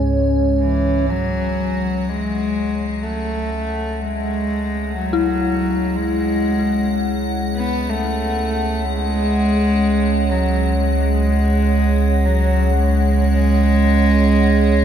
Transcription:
Already playing: synth drone C#2 G#2, analog synth pad G#3 C#4 C#5, synth bell G#4, ambient pad G#5
0.61 cello E3
1.08 synth drone C#2, cello F#3, analog synth pad G#4, ambient pad F#5
1.62 analog synth pad C#4
2.08 cello G#3
3.03 cello A3
3.24 analog synth pad C#5
4.01 cello G#3
4.97 cello F#3
5.13 synth bell E4
5.96 cello G#3
7.56 cello B3
7.89 cello A3
8.85 cello G#3
10.32 cello F#3
10.80 cello G#3
12.26 cello F#3
12.73 cello G#3

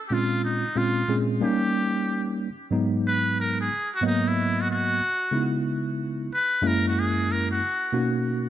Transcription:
0.08 tine electric piano A#2 G#3 C4 C#4, muted trumpet G4
0.12 tine electric piano F4, muted trumpet F4
0.45 muted trumpet D#4
0.75 tine electric piano A#2 G#3 C4 C#4 F4, muted trumpet F4
1.08 tine electric piano A#2 G#3 C4 C#4 G#4
1.41 tine electric piano G3 A#3 C#4 D#4, muted trumpet G4
2.71 tine electric piano G#2 F#3 G#3 B3 D#4
3.07 muted trumpet B4
3.40 muted trumpet A#4
3.61 muted trumpet G#4
3.95 muted trumpet F#4
4.01 tine electric piano G#2 F#3 A#3 B3 D#5
4.06 muted trumpet D#4
4.28 muted trumpet E4
4.61 muted trumpet F#4
4.71 muted trumpet F#4
5.31 tine electric piano C#3 G#3 B3 D#4 E4
6.34 muted trumpet B4
6.62 tine electric piano F#2 G#3 A#3 C#4 E4
6.67 muted trumpet A#4
6.88 muted trumpet F#4
7.00 muted trumpet G#4
7.32 muted trumpet A#4
7.51 muted trumpet F#4
7.92 tine electric piano B2 A#3 C#4 D#4 F#4

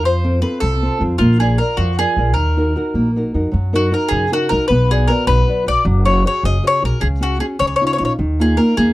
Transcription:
0.03 upright bass F2, nylon-string guitar F3, mandolin C5
0.24 nylon-string guitar C4 F4 A4
0.42 nylon-string guitar C4 F4 A4, mandolin B4
0.60 upright bass C2, nylon-string guitar C3, mandolin A4
0.83 nylon-string guitar C4 F4 A4
1.00 upright bass F2, nylon-string guitar C4 F4 A4
1.18 upright bass A#1, nylon-string guitar A#3, mandolin F4
1.40 nylon-string guitar F4 A#4 D5, mandolin G#4
1.58 nylon-string guitar F4 A#4 D5, mandolin A#4
1.77 upright bass F2, nylon-string guitar F3, mandolin F#4
1.99 nylon-string guitar F4 A#4 D5, mandolin G#4
2.17 upright bass A#1, nylon-string guitar F4 A#4 D5
2.34 upright bass D#2, nylon-string guitar D#3, mandolin A#4
2.57 nylon-string guitar D#4 F#4 A#4
2.76 nylon-string guitar D#4 F#4 A#4
2.94 upright bass A#1, nylon-string guitar A#3
3.16 nylon-string guitar D#4 F#4 A#4
3.34 upright bass F2, nylon-string guitar D#4 F#4 A#4
3.52 upright bass F#2, nylon-string guitar F#3
3.73 nylon-string guitar D#4 F#4 A#4, mandolin F#4
3.92 nylon-string guitar D#4 F#4 A#4, mandolin A#4
4.09 upright bass F#2, nylon-string guitar C#3, mandolin G#4
4.32 nylon-string guitar D#4 F#4 A#4, mandolin F#4
4.49 upright bass C2, nylon-string guitar D#4 F#4 A#4, mandolin A#4
4.68 upright bass B1, nylon-string guitar B3, mandolin B4
4.90 nylon-string guitar F#4 B4 D5, mandolin G#4
5.08 nylon-string guitar F#4 B4 D5, mandolin A#4
5.27 upright bass B1, nylon-string guitar F#3, mandolin B4
5.48 nylon-string guitar F#4 B4 D5
5.66 upright bass B1, nylon-string guitar F#4 B4 D5, mandolin D5
5.85 upright bass F#1, nylon-string guitar F#3
6.05 nylon-string guitar F#4 G#4 C#5, mandolin C#5
6.25 nylon-string guitar F#4 G#4 C#5, mandolin C#5
6.43 upright bass F#1, nylon-string guitar C#3, mandolin D#5
6.63 nylon-string guitar F#4 G#4 C#5
6.67 mandolin C#5
6.82 upright bass B1, nylon-string guitar F#4 G#4 C#5, mandolin A#4
7.00 upright bass C#2, nylon-string guitar C#3, mandolin G#4
7.21 nylon-string guitar C#4 F#4 G#4, mandolin F#4
7.40 nylon-string guitar C#4 F#4 G#4, mandolin G#4
7.59 upright bass C#2, nylon-string guitar C#3, mandolin C#5
7.76 mandolin C#5
7.81 nylon-string guitar C#4 D#4 F4
7.87 mandolin C#5
7.93 mandolin C#5
7.98 upright bass A#1, nylon-string guitar C#4 D#4 F4, mandolin C#5
8.05 mandolin C#5
8.19 upright bass D#2, nylon-string guitar D#3
8.39 nylon-string guitar A#3 D#4 F4, mandolin G#4
8.57 nylon-string guitar A#3 D#4 F4, mandolin A#4
8.77 upright bass D#2, nylon-string guitar A#3, mandolin G#4

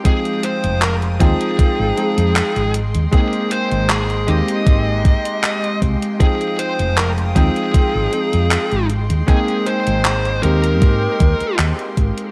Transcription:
Already playing: string section G#3 G5
0.04 electric grand piano F3 G#3 C4 D#4 G5, lead electric guitar G#4, string section F5 D#6, kick, closed hi-hat
0.25 closed hi-hat
0.43 lead electric guitar C5, closed hi-hat
0.64 fretless electric bass F1, closed hi-hat
0.82 lead electric guitar A#4, clap, closed hi-hat
1.02 closed hi-hat
1.19 fretless electric bass D#2, electric grand piano F3 G#3 C4 D#4 G5, lead electric guitar G#4, kick, closed hi-hat
1.41 closed hi-hat
1.59 muted fretless electric bass stroke, kick, closed hi-hat
1.79 fretless electric bass G#1
1.97 electric grand piano F3 G#3 C4 D#4 G5, closed hi-hat
2.17 fretless electric bass F2, closed hi-hat
2.36 clap, closed hi-hat
2.56 fretless electric bass G#1, closed hi-hat
2.74 string section G#3 D#5 G5 C6, closed hi-hat
2.95 fretless electric bass D#2, closed hi-hat
3.11 electric grand piano G#3 A#3 C4 D#4 G5, lead electric guitar G#4, kick, closed hi-hat
3.33 closed hi-hat
3.51 lead electric guitar C5, closed hi-hat
3.71 fretless electric bass G#1, closed hi-hat
3.90 lead electric guitar G#4, clap, closed hi-hat
4.10 closed hi-hat
4.27 fretless electric bass D#2, electric grand piano G#3 A#3 C4 D#4 G4, lead electric guitar D#5, closed hi-hat
4.48 closed hi-hat
4.67 fretless electric bass G#1, kick, closed hi-hat
5.05 kick, closed hi-hat
5.25 closed hi-hat
5.44 clap, closed hi-hat
5.64 closed hi-hat
5.82 fretless electric bass C2, kick, closed hi-hat
6.02 closed hi-hat
6.19 electric grand piano F3 G#3 C4 D#4 G5, lead electric guitar G#4, string section F5 D#6, kick, closed hi-hat
6.41 closed hi-hat
6.59 lead electric guitar C5, closed hi-hat
6.79 fretless electric bass F1, closed hi-hat
6.97 lead electric guitar A#4, clap, closed hi-hat
7.18 closed hi-hat
7.35 fretless electric bass D#2, electric grand piano F3 G#3 C4 D#4 G5, lead electric guitar G#4, kick, closed hi-hat
7.56 closed hi-hat
7.74 muted fretless electric bass stroke, kick, closed hi-hat
7.95 fretless electric bass G#1
8.12 electric grand piano F3 G#3 C4 D#4 G5, closed hi-hat
8.33 fretless electric bass F2, closed hi-hat
8.51 clap, closed hi-hat
8.71 fretless electric bass G#1, closed hi-hat
8.90 string section G#3 D#5 C6, closed hi-hat
9.10 fretless electric bass D#2, closed hi-hat
9.27 electric grand piano G#3 A#3 C4 D#4 G5, lead electric guitar G#4, kick, closed hi-hat
9.48 closed hi-hat
9.66 lead electric guitar C5, closed hi-hat
9.87 fretless electric bass G#1, closed hi-hat
10.05 clap, closed hi-hat
10.25 closed hi-hat
10.42 fretless electric bass D#2, electric grand piano G#3 A#3 C4 D#4 G4, lead electric guitar A#4, closed hi-hat
10.64 closed hi-hat
10.82 fretless electric bass G#2, kick, closed hi-hat
11.20 fretless electric bass D#2, kick, closed hi-hat
11.40 muted fretless electric bass stroke, closed hi-hat
11.59 fretless electric bass D#2, clap, closed hi-hat
11.79 closed hi-hat
11.97 fretless electric bass G#1, kick, closed hi-hat
12.18 closed hi-hat

